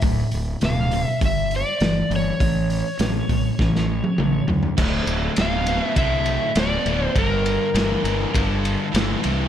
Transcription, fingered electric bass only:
X:1
M:4/4
L:1/8
Q:1/4=101
K:Dm
V:1 name="Fingered electric bass" clef=bass
D,,, D,,, D,,,2 G,,,2 G,,, G,,, | A,,,2 A,,, A,,, A,,,2 A,,, D,, | D,,, D,,, D,,,2 C,,2 D,,, D,,, | G,,,2 G,,, G,,, G,,,2 G,,, C,, |]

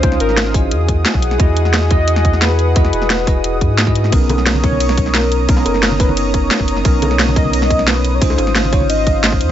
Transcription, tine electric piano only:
X:1
M:4/4
L:1/16
Q:1/4=176
K:B
V:1 name="Tine electric piano"
[CD^E^B]6 [=EFGd]8- [EFGd]2 | [EFGd]6 [EFGd]8- [EFGd]2 | [EFGd]6 [EFGd]6- [EFGd] [EFGd]3 | [B,CDA]6 [B,CDA]8- [B,CDA]2 |
[B,CDA]6 [B,CDA]8- [B,CDA]2 | [B,CDA]6 [B,CDA]8- [B,CDA]2 | [CD^E^B]6 [CDEB]8- [CDEB]2 |]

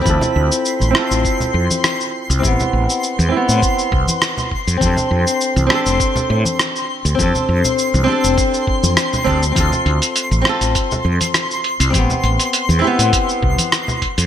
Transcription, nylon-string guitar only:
X:1
M:4/4
L:1/16
Q:"Swing 16ths" 1/4=101
K:Am
V:1 name="Nylon-string guitar"
[CEFA]6 [CEFA]8- [CEFA]2 | [B,CEG]6 [B,CEG]8 z2 | [CDGA]6 [CDGA]8- [CDGA]2 | [CDGA]6 [CDGA]8 [CDGA] z |
[CEFA]6 [CEFA]8- [CEFA]2 | [B,CEG]6 [B,CEG]8 z2 |]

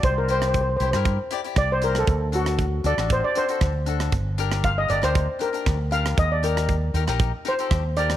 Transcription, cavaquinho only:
X:1
M:4/4
L:1/16
Q:1/4=117
K:Gm
V:1 name="Cavaquinho"
z2 [=EGc]2 z2 [EGc] [EGB]2 z [EGd] [EGd]2 z [EGc]2 | z2 [D^FA]2 z2 [DFA] [DFA]2 z [DFA] [DFA]2 z [DFA]2 | z2 [DGB]2 z2 [DGB] [DGB]2 z [DGc] [DGB]2 z [DGB]2 | z2 [EGB]2 z2 [EGB] [EGB]2 z [EGB] [EGA]2 z [EGB]2 |]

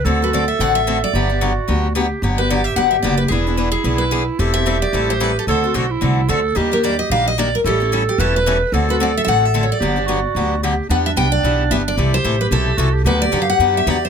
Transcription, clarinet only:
X:1
M:4/4
L:1/8
Q:"Swing" 1/4=222
K:G
V:1 name="Clarinet"
A8 | G2 F4 G2 | G8 | E8 |
G8 | A2 F E3 A2 | G6 z2 | A4 B4 |
A8 | G2 F4 G2 | D8 | G6 F G |
G8 |]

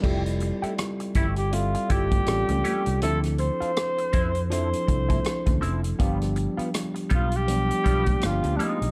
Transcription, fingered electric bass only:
X:1
M:4/4
L:1/16
Q:"Swing 16ths" 1/4=81
K:F
V:1 name="Fingered electric bass" clef=bass
F,,,3 z3 G,,,4 G,,,2 A,,, ^C,, z ^B,,, | D,,3 z3 F,,4 C,,2 z D,, F,,,2 | G,,,3 z3 =B,,,4 B,,,2 G,,, D,, z B,,, |]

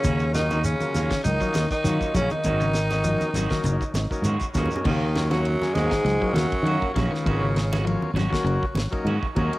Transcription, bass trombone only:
X:1
M:4/4
L:1/16
Q:"Swing 16ths" 1/4=100
K:Ebm
V:1 name="Bass trombone" clef=bass
D,2 E,2 D,4 E,3 E,3 D, E,- | E,12 z2 D,,2 | E,,3 G,,3 A,,4 G,,4 D,,2- | D,,6 z8 z2 |]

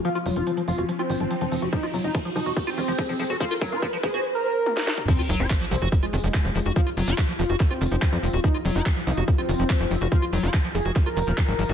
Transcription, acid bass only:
X:1
M:4/4
L:1/16
Q:1/4=143
K:Fphr
V:1 name="Acid bass" clef=bass
F, F G, F F, F, F, G F, F E, F, F, F, F, G | F, F G, F F, F, F, G F, F E, F, F, F, F, G | F, F G, F F, F, F, G z8 | F, F G, F F, F, F, G F, F E, F, F, F, F, G |
F, F G, F F, F, F, G F, F E, F, F, F, F, G | F, F G, F F, F, F, G F, F E, F, F, F, F, G | F, F G, F F, F, F, G F, F E, F, F, F, F, G |]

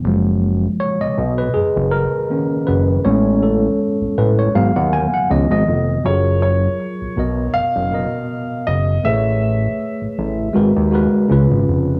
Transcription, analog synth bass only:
X:1
M:4/4
L:1/16
Q:"Swing 16ths" 1/4=80
K:Blyd
V:1 name="Analog synth bass" clef=bass
F,,,4 z B,,, B,,,2 F,,, F,,,2 z3 F,,,2 | =A,,,4 z A,,, A,,,2 G,,, D,,2 z C,, G,,, E,,,2 | F,,,4 z B,,, B,,,2 F,,, F,,,2 z3 F,,,2 | =A,,,4 z A,,, A,,,2 G,,, D,,2 z C,, G,,, E,,,2 |]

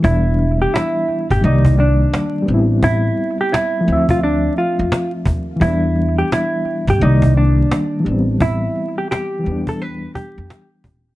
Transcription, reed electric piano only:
X:1
M:4/4
L:1/8
Q:"Swing 16ths" 1/4=86
K:Ephr
V:1 name="Reed electric piano"
[E,G,B,D]4 [_E,G,_B,d]3 [G,=B,C=E]- | [G,B,CE]3 [F,A,Ce]4- [F,A,Ce] | [E,G,B,D]4 [D,_E,G,_B,d]3 [=E,G,=B,C]- | [E,G,B,C]3 [E,G,B,D]4- [E,G,B,D] |]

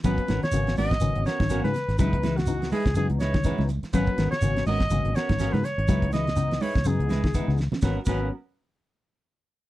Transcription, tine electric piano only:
X:1
M:4/4
L:1/8
Q:"Swing 16ths" 1/4=124
K:G#m
V:1 name="Tine electric piano"
[F,A,B,C] z [F,A,B,C] z [F,A,B,C] z [F,A,B,C] z | [E,B,D] z [E,B,D] z [E,B,D] z [E,B,D] z | [F,A,B,C] z [F,A,B,C] z [F,A,B,C] z [F,A,B,C] z | [E,B,D] z [E,B,D] z [E,B,D] z [E,B,D] z |
[F,A,B,C] [F,A,B,C] z6 |]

